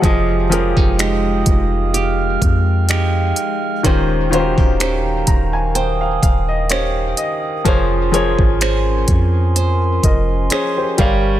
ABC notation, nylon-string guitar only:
X:1
M:4/4
L:1/16
Q:"Swing 16ths" 1/4=63
K:Fm
V:1 name="Nylon-string guitar"
[F,G]2 D E [A,EG]4 G4 [A,EG]4 | [E,c]2 F G [DGc]4 c4 [DGc]4 | [F,c]2 A2 [DAc]4 c4 [DAc]2 G,2 |]